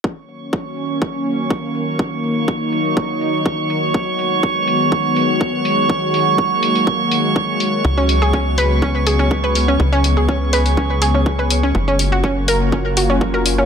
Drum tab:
HH |--o---o---o---o-|--o---oo--o---o-|--o---o---o---o-|--o---oo--o---o-|
BD |o---o---o---o---|o---o---o---o---|o---o---o---o---|o---o---o---o---|

HH |--o---o---o---o-|--o---oo--o---o-|--o---o---o---o-|
BD |o---o---o---o---|o---o---o---o---|o---o---o---o---|